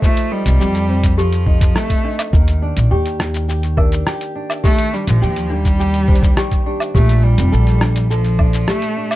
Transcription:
Already playing: nylon-string guitar C4 D#4 A4
0.02 nylon-string guitar F3, cello A3, kick, shaker
0.17 closed hi-hat, shaker
0.31 cello G3, nylon-string guitar D#4, toy piano A4
0.46 upright bass C2, closed hi-hat, shaker
0.60 upright bass F2, nylon-string guitar G4, shaker
0.74 nylon-string guitar A4, closed hi-hat, shaker
0.89 nylon-string guitar C4
1.03 kick, closed hi-hat, shaker
1.18 cello F3, toy piano G4, nylon-string guitar A4, shaker
1.32 closed hi-hat, shaker
1.46 nylon-string guitar D#4, kick
1.61 kick, closed hi-hat, shaker
1.75 cello A3, nylon-string guitar A4, cross-stick, shaker
1.90 kick, closed hi-hat, shaker
2.04 toy piano D4, nylon-string guitar D#4
2.19 closed hi-hat, low woodblock, shaker
2.33 upright bass D#2, nylon-string guitar D#3, kick, shaker
2.48 closed hi-hat, shaker
2.62 nylon-string guitar D4
2.77 upright bass A#1, closed hi-hat, shaker
2.91 upright bass D#2, nylon-string guitar G4, toy piano G4
3.06 closed hi-hat, shaker
3.20 nylon-string guitar A#3, cross-stick
3.34 closed hi-hat, shaker
3.48 nylon-string guitar G4, shaker
3.63 closed hi-hat, shaker
3.77 nylon-string guitar D4, toy piano A#4, kick, low woodblock
3.92 closed hi-hat, shaker
4.06 nylon-string guitar G4, cross-stick, shaker
4.21 closed hi-hat, shaker
4.35 nylon-string guitar D4
4.50 low woodblock, shaker
4.64 nylon-string guitar D#3, cello A3, toy piano G4, kick, shaker
4.79 closed hi-hat
4.93 cello G3, nylon-string guitar D4, shaker
5.07 upright bass A#1, cello F3, closed hi-hat, shaker
5.22 upright bass D#2, nylon-string guitar G4, shaker
5.36 closed hi-hat, shaker
5.50 cello G3, nylon-string guitar A#3, toy piano D4
5.65 kick, closed hi-hat, shaker
5.79 nylon-string guitar G4, shaker
5.94 closed hi-hat, shaker
6.08 nylon-string guitar D4, toy piano C5, kick
6.16 closed hi-hat
6.23 kick, shaker
6.37 nylon-string guitar G4, toy piano G4, cross-stick, shaker
6.51 kick, closed hi-hat, shaker
6.66 nylon-string guitar D4, toy piano G4
6.80 low woodblock, shaker
6.95 upright bass A#1, nylon-string guitar A#2, cello A3, toy piano G4, kick, shaker
7.09 closed hi-hat, shaker
7.23 cello G3, nylon-string guitar D4
7.38 upright bass F1, closed hi-hat, shaker
7.52 upright bass A#1, nylon-string guitar A4, shaker
7.67 closed hi-hat, shaker
7.81 toy piano D4, cross-stick
7.96 closed hi-hat, shaker
8.10 cello F3, nylon-string guitar A4, shaker
8.25 closed hi-hat, shaker
8.39 nylon-string guitar D4, kick, low woodblock
8.53 closed hi-hat, shaker
8.68 cello A3, toy piano G4, nylon-string guitar A4, cross-stick, shaker
8.82 closed hi-hat, shaker
8.97 nylon-string guitar D4
9.11 low woodblock, shaker

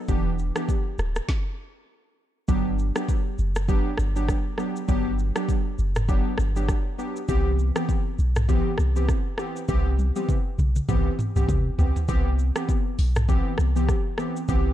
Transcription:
0.08 sub bass E1, synth keys E3 B3 D4 G4, kick, shaker
0.39 shaker
0.56 synth keys E3 B3 D4 G4, cross-stick, shaker
0.69 kick, shaker
0.98 sub bass D1, cross-stick, shaker
1.16 cross-stick, shaker
1.29 kick, snare
2.48 sub bass G1, synth keys F#3 B3 D4 G4, kick, shaker
2.79 shaker
2.96 synth keys F#3 B3 D4 G4, cross-stick, shaker
3.09 kick, shaker
3.39 sub bass F#1, shaker
3.56 cross-stick, shaker
3.68 synth keys F#3 B3 D4 G4, kick, shaker
3.98 sub bass G1, cross-stick, shaker
4.16 synth keys F#3 B3 D4 G4, shaker
4.28 kick, cross-stick, shaker
4.58 synth keys F#3 B3 D4 G4, cross-stick, shaker
4.76 shaker
4.88 sub bass G1, synth keys F#3 B3 D4 G4, kick, shaker
5.19 shaker
5.36 synth keys F#3 B3 D4 G4, cross-stick, shaker
5.49 kick, shaker
5.79 sub bass F#1, shaker
5.96 cross-stick, mid tom, shaker
6.08 synth keys F#3 B3 D4 G4, kick, shaker
6.38 sub bass G1, cross-stick, shaker
6.56 synth keys F#3 B3 D4 G4, shaker
6.68 kick, cross-stick, shaker
6.98 synth keys F#3 B3 D4 G4, shaker
7.16 shaker
7.28 sub bass C2, synth keys E3 B3 C4 G4, kick, shaker
7.59 shaker
7.76 synth keys E3 B3 C4 G4, cross-stick, shaker
7.89 kick, shaker
8.19 sub bass B1, shaker
8.36 cross-stick, mid tom, shaker
8.48 synth keys E3 B3 C4 G4, kick, shaker
8.78 sub bass C2, cross-stick, shaker
8.96 synth keys E3 B3 C4 G4, shaker
9.09 kick, cross-stick, shaker
9.38 synth keys E3 B3 C4 G4, cross-stick, shaker
9.56 shaker
9.68 sub bass C2, synth keys E3 B3 C4 G4, kick, high tom, shaker
9.99 high tom, shaker
10.16 synth keys E3 B3 C4 G4, high tom, shaker
10.29 kick, mid tom, shaker
10.58 sub bass B1, mid tom, shaker
10.76 mid tom, shaker
10.88 sub bass C2, synth keys E3 B3 C4 G4, kick, mid tom, shaker
11.19 mid tom, shaker
11.36 sub bass C2, synth keys E3 B3 C4 G4, mid tom, shaker
11.49 sub bass C3, kick, floor tom, shaker
11.78 sub bass C2, synth keys E3 B3 C4 G4, floor tom, shaker
11.96 floor tom, shaker
12.08 sub bass C2, synth keys E3 B3 C4 G4, kick, shaker
12.39 shaker
12.56 synth keys E3 B3 C4 G4, cross-stick, shaker
12.69 kick, shaker
12.99 sub bass B1, open hi-hat, shaker
13.16 cross-stick, mid tom, shaker
13.28 synth keys E3 B3 C4 G4, kick, shaker
13.58 sub bass C2, cross-stick, shaker
13.76 synth keys E3 B3 C4 G4, shaker
13.89 kick, cross-stick, shaker
14.18 synth keys E3 B3 C4 G4, cross-stick, shaker
14.36 shaker
14.48 sub bass C2, synth keys E3 B3 C4 G4, kick, shaker

